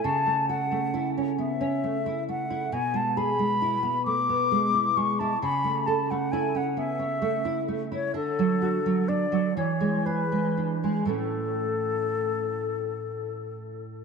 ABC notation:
X:1
M:6/8
L:1/16
Q:3/8=44
K:A
V:1 name="Flute"
a2 f3 z e4 f2 | g a b4 d'4 c' a | b2 a f g f e4- e c | A4 d2 c2 B3 z |
A8- A2 z2 |]
V:2 name="Nylon-string guitar"
C, A, A A, E C B, C A, E A, E | B,, G, G G, E B, A, B, G, E G, E | C, A, A A, E C B, C A, E A, E | D, F, F F, D F, E, G, G G, D G, |
[A,,A,C]12 |]